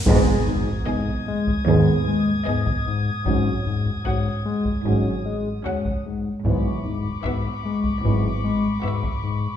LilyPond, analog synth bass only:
\new Staff \with { instrumentName = "Analog synth bass" } { \clef bass \time 4/4 \key gis \minor \tempo 4 = 75 gis,8 gis,8 gis,8 gis8 gis,8 gis8 gis,8 gis,8 | gis,8 gis,8 gis,8 gis8 gis,8 gis8 gis,8 gis,8 | gis,8 gis,8 gis,8 gis8 gis,8 gis8 gis,8 gis,8 | }